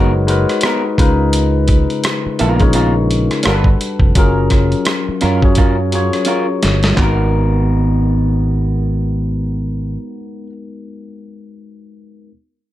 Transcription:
0.00 0.45 F#1 medium
0.00 0.27 G#3 medium
0.00 0.11 B3 medium
0.00 0.28 D#4 medium
0.00 0.11 F#4 medium
0.00 0.29 F#4 medium
0.00 0.12 A#4 medium
0.00 0.29 A#4 medium
0.00 0.18 B4 medium
0.00 0.99 C#5 loud
0.27 0.97 G#3 medium
0.27 0.97 D#4 medium
0.27 0.98 F#4 medium
0.27 0.99 A#4 medium
0.27 0.99 B4 medium
0.27 closed hi-hat medium
0.49 cross-stick soft
0.49 closed hi-hat soft
0.61 0.82 B3 medium
0.61 0.82 F#4 medium
0.61 cross-stick loud
0.61 closed hi-hat medium
0.66 0.83 A#4 medium
0.97 1.85 C#2 medium
0.97 2.11 C#3 medium
0.97 2.12 G#3 medium
0.97 2.12 D#4 medium
0.97 2.12 F4 medium
0.97 2.13 A#4 medium
0.97 2.13 B4 medium
0.97 kick medium
0.97 closed hi-hat medium
1.33 closed hi-hat medium
1.68 kick medium
1.68 closed hi-hat medium
1.90 closed hi-hat soft
2.04 muted clean electric guitar stroke soft
2.04 cross-stick loud
2.04 closed hi-hat medium
2.26 muted fretless electric bass stroke soft
2.39 3.27 A#1 medium
2.39 2.62 B3 medium
2.39 2.62 F4 medium
2.39 2.62 A#4 medium
2.39 closed hi-hat medium
2.60 3.45 C#3 medium
2.60 3.45 G#3 medium
2.60 3.45 D#4 medium
2.60 3.46 F4 medium
2.60 3.46 A#4 medium
2.60 3.46 C#5 medium
2.60 kick medium
2.60 closed hi-hat soft
2.73 2.93 B3 medium
2.73 2.93 F4 medium
2.73 2.94 A#4 medium
2.73 closed hi-hat medium
3.11 closed hi-hat medium
3.31 cross-stick soft
3.31 closed hi-hat soft
3.43 3.75 G1 medium
3.43 4.04 G3 medium
3.43 3.67 D4 medium
3.43 4.04 D4 medium
3.43 3.67 F#4 medium
3.43 4.04 F#4 medium
3.43 3.68 B4 medium
3.43 cross-stick medium
3.43 closed hi-hat medium
3.47 4.05 A4 medium
3.47 3.54 A#4 medium
3.55 4.08 B4 medium
3.64 kick medium
3.81 closed hi-hat medium
4.00 4.12 F1 medium
4.00 kick medium
4.15 4.74 F#1 medium
4.15 5.11 F#3 medium
4.15 5.12 C#4 medium
4.15 5.12 F4 medium
4.15 5.12 G#4 medium
4.15 5.13 A#4 loud
4.15 kick medium
4.15 closed hi-hat medium
4.50 kick medium
4.50 cross-stick soft
4.50 closed hi-hat soft
4.72 closed hi-hat soft
4.85 muted clean electric guitar stroke soft
4.85 cross-stick loud
4.85 closed hi-hat medium
5.09 muted fretless electric bass stroke soft
5.21 6.09 F#2 medium
5.21 5.40 C#4 medium
5.21 5.40 F4 medium
5.21 5.40 A#4 medium
5.21 cross-stick soft
5.21 closed hi-hat medium
5.42 5.81 F#3 medium
5.42 5.81 C#4 medium
5.42 5.82 F4 medium
5.42 5.82 G#4 medium
5.42 5.83 C#5 medium
5.42 kick medium
5.55 5.76 C#4 medium
5.55 5.76 F4 medium
5.55 5.76 A#4 medium
5.55 kick medium
5.55 closed hi-hat medium
5.92 6.74 F#3 medium
5.92 6.75 C#4 medium
5.92 6.75 F4 medium
5.92 6.75 G#4 medium
5.92 6.76 C#5 medium
5.92 closed hi-hat medium
6.13 cross-stick soft
6.13 closed hi-hat soft
6.25 6.45 C#4 medium
6.25 6.46 F4 medium
6.25 6.46 A#4 medium
6.25 closed hi-hat medium
6.63 6.92 G1 medium
6.63 snare medium
6.63 closed hi-hat medium
6.83 snare medium
6.83 closed hi-hat soft
6.92 9.90 G#3 medium
6.92 9.93 D#4 medium
6.97 9.96 G#1 medium
6.97 10.47 B3 medium
6.97 9.97 F#4 medium
6.97 10.50 F#4 medium
6.97 kick medium
6.97 clap medium
7.01 10.03 B3 medium
7.01 10.00 A#4 medium
7.01 10.52 A#4 medium

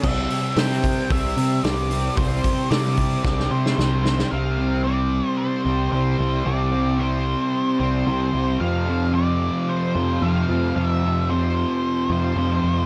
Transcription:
0.02 0.26 C2 loud
0.02 0.55 C3 medium
0.02 0.57 G3 medium
0.02 0.59 C4 loud
0.02 0.59 E5 loud
0.02 kick loud
0.02 crash loud
0.30 open hi-hat medium
0.56 1.09 C3 medium
0.56 1.01 C3 loud
0.56 1.11 G3 medium
0.56 1.12 C4 medium
0.56 1.13 G5 loud
0.56 snare loud
0.56 open hi-hat medium
0.71 snare soft
0.84 kick medium
0.84 open hi-hat medium
1.10 1.33 C2 loud
1.10 1.63 C3 medium
1.10 1.40 G3 medium
1.10 1.37 C4 medium
1.10 1.64 E5 loud
1.10 kick loud
1.10 open hi-hat medium
1.37 1.59 C3 medium
1.37 1.65 G3 medium
1.37 1.66 C4 medium
1.37 open hi-hat medium
1.63 2.08 C2 medium
1.63 2.16 C3 medium
1.63 1.92 G3 medium
1.63 1.89 C4 medium
1.63 2.20 D5 medium
1.63 snare loud
1.63 open hi-hat medium
1.90 2.16 G3 medium
1.90 2.18 C4 medium
1.90 open hi-hat medium
2.16 2.39 C2 medium
2.16 2.68 C3 loud
2.16 2.70 G3 medium
2.16 2.71 C4 loud
2.16 2.73 C5 loud
2.16 kick loud
2.16 open hi-hat medium
2.44 kick medium
2.44 open hi-hat medium
2.69 3.22 C3 medium
2.69 3.15 C3 loud
2.69 3.24 G3 medium
2.69 3.25 C4 medium
2.69 4.01 D5 medium
2.69 snare loud
2.69 open hi-hat medium
2.86 snare soft
2.97 kick medium
2.97 open hi-hat medium
3.23 3.47 C2 loud
3.23 3.76 C3 medium
3.23 3.53 G3 medium
3.23 3.50 C4 medium
3.23 kick loud
3.23 snare medium
3.40 snare medium
3.51 3.73 C3 medium
3.51 3.77 G3 medium
3.51 3.79 C4 medium
3.51 4.34 C5 loud
3.66 snare medium
3.77 4.23 C2 loud
3.77 4.29 C3 medium
3.77 4.05 G3 medium
3.77 4.02 C4 medium
3.77 snare medium
4.03 4.31 G3 medium
4.03 4.30 C4 medium
4.03 snare loud
4.19 snare medium
4.30 5.20 C2 medium
4.30 4.84 C3 medium
4.30 4.60 G3 medium
4.30 4.57 C4 loud
4.30 4.84 F5 loud
4.58 4.85 G3 soft
4.58 4.86 C4 medium
4.84 5.91 C3 medium
4.84 5.67 G3 loud
4.84 5.64 C4 medium
4.84 5.29 D5 medium
5.29 5.38 C5 medium
5.38 5.91 C5 loud
5.65 5.88 C2 medium
5.65 5.93 G3 medium
5.65 5.95 C4 medium
5.92 6.15 C2 medium
5.92 6.43 C3 medium
5.92 6.21 G3 medium
5.92 6.19 C4 medium
5.92 6.48 C5 loud
6.19 6.42 C2 medium
6.19 6.45 G3 medium
6.19 6.47 C4 medium
6.44 7.34 C2 loud
6.44 6.98 C3 medium
6.44 6.74 G3 medium
6.44 6.72 C4 loud
6.44 7.01 D5 loud
6.72 6.99 G3 medium
6.72 7.01 C4 medium
6.99 8.05 C3 medium
6.99 7.81 G3 medium
6.99 7.79 C4 medium
6.99 7.78 C5 medium
7.79 8.02 C2 medium
7.79 8.07 G3 medium
7.79 8.09 C4 medium
7.79 8.57 C5 loud
8.06 8.29 C2 medium
8.06 8.59 C3 medium
8.06 8.35 G3 medium
8.06 8.33 C4 medium
8.33 8.56 C2 medium
8.33 8.61 G3 medium
8.33 11.83 C4 medium
8.59 9.12 F2 medium
8.59 9.49 F2 medium
8.59 8.88 C3 loud
8.59 8.86 F3 loud
8.59 9.14 F5 loud
8.86 9.13 C3 medium
8.86 9.16 F3 medium
9.12 10.20 F2 medium
9.12 9.97 C3 medium
9.12 9.94 F3 loud
9.12 9.70 D5 medium
9.69 10.24 C5 medium
9.95 10.17 F2 medium
9.95 10.22 C3 medium
9.95 10.24 F3 medium
10.21 10.75 F2 medium
10.21 10.44 F2 medium
10.21 10.50 C3 medium
10.21 10.48 F3 medium
10.21 10.76 F5 loud
10.49 10.71 F2 medium
10.49 10.76 C3 medium
10.49 10.79 F3 medium
10.76 11.28 F2 medium
10.76 11.64 F2 loud
10.76 11.05 C3 loud
10.76 11.02 F3 loud
10.76 10.87 F5 loud
10.87 11.31 E5 loud
11.03 11.29 C3 soft
11.03 11.32 F3 medium
11.29 12.35 F2 medium
11.29 12.11 C3 loud
11.29 12.08 F3 medium
11.29 12.11 C5 medium
12.09 12.32 F2 medium
12.09 12.37 C3 medium
12.09 12.39 F3 medium
12.09 12.86 C5 medium
12.36 12.58 F2 medium
12.36 12.86 F2 medium
12.36 12.64 C3 medium
12.36 12.62 F3 medium
12.62 12.86 F2 medium
12.62 12.86 C3 medium
12.62 12.86 F3 medium

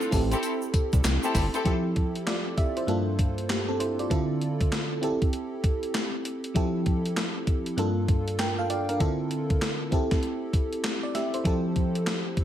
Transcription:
0.00 0.10 C4 medium
0.00 0.11 E4 medium
0.00 0.13 F4 medium
0.00 0.13 A4 medium
0.00 shaker soft
0.11 0.35 A1 loud
0.11 1.62 C4 medium
0.11 1.62 E4 medium
0.11 1.63 G4 medium
0.11 1.63 A4 medium
0.11 kick medium
0.11 open hi-hat medium
0.11 tambourine medium
0.11 shaker medium
0.32 0.46 C4 medium
0.32 0.46 E4 medium
0.32 0.46 G4 medium
0.32 0.46 A4 medium
0.32 closed hi-hat soft
0.32 shaker medium
0.43 closed hi-hat medium
0.43 tambourine medium
0.43 shaker medium
0.62 shaker medium
0.74 0.81 C2 soft
0.74 kick loud
0.74 closed hi-hat medium
0.74 tambourine medium
0.93 1.01 C2 medium
0.93 kick medium
0.93 closed hi-hat medium
0.93 shaker soft
1.04 1.18 C2 medium
1.04 snare loud
1.04 clap medium
1.04 closed hi-hat medium
1.04 tambourine loud
1.04 shaker medium
1.23 1.38 C4 medium
1.23 1.38 E4 medium
1.23 1.38 G4 medium
1.23 1.38 A4 medium
1.23 shaker medium
1.35 1.49 G1 loud
1.35 kick medium
1.35 snare medium
1.35 open hi-hat medium
1.35 tambourine medium
1.35 shaker medium
1.54 1.68 C4 medium
1.54 1.68 E4 medium
1.54 1.68 G4 medium
1.54 1.68 A4 loud
1.54 closed hi-hat medium
1.54 shaker soft
1.64 2.85 F3 medium
1.64 2.85 C4 medium
1.64 2.26 E4 medium
1.64 2.26 G4 medium
1.64 2.26 A4 medium
1.64 kick loud
1.64 closed hi-hat medium
1.96 kick medium
1.96 closed hi-hat medium
2.15 closed hi-hat soft
2.27 2.56 F4 medium
2.27 2.56 D5 medium
2.27 snare loud
2.27 clap medium
2.27 closed hi-hat medium
2.58 2.76 G4 medium
2.58 2.76 E5 medium
2.58 kick medium
2.58 closed hi-hat medium
2.77 3.06 E4 medium
2.77 3.06 C5 medium
2.77 closed hi-hat soft
2.87 4.08 G2 medium
2.87 3.18 A#3 medium
2.87 3.18 D4 medium
2.87 3.18 F4 medium
2.87 3.19 A4 medium
2.87 closed hi-hat medium
3.19 kick medium
3.19 closed hi-hat medium
3.38 closed hi-hat medium
3.49 3.68 A#3 soft
3.49 3.68 G4 medium
3.49 snare loud
3.49 clap medium
3.49 closed hi-hat medium
3.68 3.80 C4 medium
3.68 3.79 A4 medium
3.80 3.98 E4 medium
3.80 3.98 C5 medium
3.80 closed hi-hat medium
3.99 4.10 F4 medium
3.99 4.28 D5 medium
3.99 closed hi-hat soft
4.10 5.02 D3 medium
4.10 5.00 C4 medium
4.10 5.01 E4 medium
4.10 5.02 F4 medium
4.10 5.03 A4 medium
4.10 kick loud
4.10 closed hi-hat medium
4.42 closed hi-hat medium
4.61 kick medium
4.61 closed hi-hat medium
4.72 snare loud
4.72 clap medium
4.72 closed hi-hat medium
5.01 6.52 C4 medium
5.01 6.52 E4 medium
5.01 6.53 G4 medium
5.01 6.53 A4 medium
5.01 closed hi-hat medium
5.22 kick medium
5.22 closed hi-hat soft
5.33 closed hi-hat medium
5.64 kick medium
5.64 closed hi-hat medium
5.83 closed hi-hat medium
5.94 snare loud
5.94 clap medium
5.94 closed hi-hat medium
6.25 closed hi-hat medium
6.44 closed hi-hat soft
6.54 7.75 F3 medium
6.54 7.75 C4 medium
6.54 7.76 E4 medium
6.54 7.76 G4 medium
6.54 7.76 A4 medium
6.54 kick loud
6.54 closed hi-hat medium
6.86 kick medium
6.86 closed hi-hat medium
7.06 closed hi-hat medium
7.17 snare loud
7.17 clap medium
7.17 closed hi-hat medium
7.47 kick medium
7.47 closed hi-hat medium
7.66 closed hi-hat soft
7.77 8.97 G2 medium
7.77 8.98 A#3 medium
7.77 8.38 D4 medium
7.77 8.38 F4 medium
7.77 8.38 A4 medium
7.77 closed hi-hat medium
8.08 kick medium
8.08 closed hi-hat medium
8.28 closed hi-hat medium
8.39 8.58 A#4 soft
8.39 8.57 G5 medium
8.39 snare loud
8.39 clap medium
8.39 closed hi-hat medium
8.59 8.70 A4 medium
8.59 8.69 F5 medium
8.70 8.88 F4 medium
8.70 8.88 D5 medium
8.70 closed hi-hat medium
8.89 9.18 D4 soft
8.89 9.18 A#4 medium
8.89 closed hi-hat soft
9.00 9.92 D3 medium
9.00 9.90 C4 medium
9.00 9.91 E4 medium
9.00 9.92 F4 medium
9.00 9.92 A4 medium
9.00 kick loud
9.00 closed hi-hat medium
9.31 closed hi-hat medium
9.50 kick medium
9.50 closed hi-hat medium
9.62 snare loud
9.62 clap medium
9.62 closed hi-hat medium
9.91 11.42 C4 medium
9.91 10.82 E4 medium
9.91 10.83 G4 medium
9.91 10.83 A4 medium
9.91 kick medium
9.91 closed hi-hat medium
10.11 kick medium
10.11 snare medium
10.11 closed hi-hat soft
10.23 closed hi-hat medium
10.53 kick loud
10.53 closed hi-hat medium
10.73 closed hi-hat medium
10.84 snare loud
10.84 clap medium
10.84 closed hi-hat medium
11.03 11.14 D5 medium
11.15 11.33 G4 medium
11.15 11.33 E5 medium
11.15 snare medium
11.15 closed hi-hat medium
11.34 11.44 E4 soft
11.34 11.63 C5 medium
11.34 closed hi-hat medium
11.44 12.44 F3 medium
11.44 12.44 C4 medium
11.44 12.44 E4 medium
11.44 12.44 G4 medium
11.44 12.44 A4 medium
11.44 kick loud
11.44 closed hi-hat medium
11.76 kick medium
11.76 closed hi-hat medium
11.95 closed hi-hat medium
12.07 snare loud
12.07 clap medium
12.07 closed hi-hat medium
12.37 kick medium
12.37 closed hi-hat medium

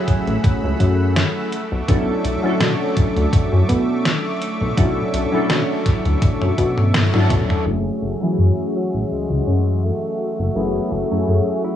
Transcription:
0.00 1.54 F#3 medium
0.00 1.54 A3 medium
0.00 7.63 A3 medium
0.00 1.54 C#4 medium
0.00 1.54 E4 medium
0.00 1.54 G#4 loud
0.00 1.48 F#5 medium
0.00 1.50 B5 medium
0.00 1.48 E6 medium
0.08 kick medium
0.08 closed hi-hat medium
0.27 0.37 A1 medium
0.27 closed hi-hat soft
0.44 kick loud
0.44 closed hi-hat medium
0.64 0.74 C#2 medium
0.80 1.24 F#2 medium
0.80 kick medium
0.80 closed hi-hat medium
1.16 snare loud
1.16 closed hi-hat medium
1.52 7.63 E5 medium
1.52 7.63 C#6 medium
1.52 7.63 D6 medium
1.52 closed hi-hat medium
1.72 1.82 B1 medium
1.88 2.12 B1 loud
1.88 2.39 F#3 medium
1.88 2.39 C#4 medium
1.88 2.39 D4 medium
1.88 2.40 E4 medium
1.88 2.40 A4 medium
1.88 kick loud
1.88 closed hi-hat medium
2.25 2.37 B1 medium
2.25 closed hi-hat medium
2.42 4.73 F#3 medium
2.42 4.73 C#4 medium
2.42 4.73 D4 medium
2.42 4.74 E4 medium
2.42 4.74 A4 loud
2.61 2.73 B2 medium
2.61 snare loud
2.61 closed hi-hat medium
2.97 kick loud
2.97 closed hi-hat medium
3.16 3.27 D2 medium
3.16 closed hi-hat soft
3.33 3.49 F#2 soft
3.33 kick loud
3.33 closed hi-hat medium
3.53 3.63 F#2 medium
3.69 4.13 B2 loud
3.69 kick medium
3.69 closed hi-hat medium
4.05 snare loud
4.05 closed hi-hat medium
4.42 closed hi-hat medium
4.61 4.71 B1 medium
4.77 5.01 B1 loud
4.77 5.28 F#3 medium
4.77 5.28 C#4 medium
4.77 5.29 D4 medium
4.77 5.29 E4 medium
4.77 5.29 A4 medium
4.77 kick loud
4.77 closed hi-hat medium
5.14 5.26 B1 medium
5.14 closed hi-hat medium
5.32 5.47 B2 soft
5.32 7.09 F#3 medium
5.32 7.10 C#4 medium
5.32 7.10 D4 medium
5.32 7.10 E4 medium
5.32 7.11 A4 loud
5.50 5.62 B2 medium
5.50 snare loud
5.50 closed hi-hat medium
5.86 kick loud
5.86 snare soft
5.86 closed hi-hat medium
6.05 6.16 D2 medium
6.05 closed hi-hat soft
6.22 kick loud
6.22 closed hi-hat medium
6.22 high tom medium
6.41 6.52 F#2 medium
6.41 high tom medium
6.58 7.02 B2 loud
6.58 kick medium
6.58 closed hi-hat medium
6.78 mid tom medium
6.94 snare loud
6.94 closed hi-hat medium
6.94 mid tom medium
7.13 7.62 F#3 medium
7.13 7.63 C#4 medium
7.13 7.63 D4 medium
7.13 7.63 E4 medium
7.13 7.63 A4 medium
7.13 mid tom medium
7.30 7.43 B2 loud
7.30 kick medium
7.30 closed hi-hat medium
7.30 mid tom medium
7.50 mid tom medium
7.65 7.90 F#1 medium
7.65 8.17 F#3 medium
7.65 8.17 A3 medium
7.65 8.18 C#4 medium
7.65 8.18 E4 medium
7.65 11.76 F#4 medium
7.65 8.18 G#4 medium
7.65 11.76 E5 medium
7.65 11.76 C#6 medium
8.02 8.15 F#1 medium
8.21 10.51 E3 medium
8.21 10.51 F#3 medium
8.21 10.52 C#4 medium
8.21 10.52 E4 medium
8.21 10.52 G#4 medium
8.38 8.51 F#2 medium
8.38 closed hi-hat medium
8.75 9.13 F#3 medium
8.75 closed hi-hat medium
8.94 9.05 A1 medium
9.11 9.27 C#2 soft
9.11 9.86 G#3 medium
9.11 closed hi-hat medium
9.30 9.41 C#2 medium
9.47 9.91 F#2 medium
9.47 closed hi-hat medium
9.84 10.58 A3 medium
9.84 closed hi-hat medium
10.20 closed hi-hat medium
10.39 10.49 F#1 medium
10.55 10.79 F#1 medium
10.55 11.06 F#3 medium
10.55 11.07 A3 medium
10.55 10.94 B3 medium
10.55 11.07 C#4 medium
10.55 11.07 E4 medium
10.55 11.07 G#4 medium
10.92 11.04 F#1 medium
10.92 11.64 A3 medium
10.92 closed hi-hat medium
11.10 11.25 F#2 soft
11.10 11.76 F#3 medium
11.10 11.76 A3 medium
11.10 11.76 C#4 medium
11.10 11.76 E4 medium
11.10 11.76 G#4 medium
11.28 11.40 F#2 medium
11.28 closed hi-hat medium
11.64 11.76 E4 loud
11.64 closed hi-hat medium

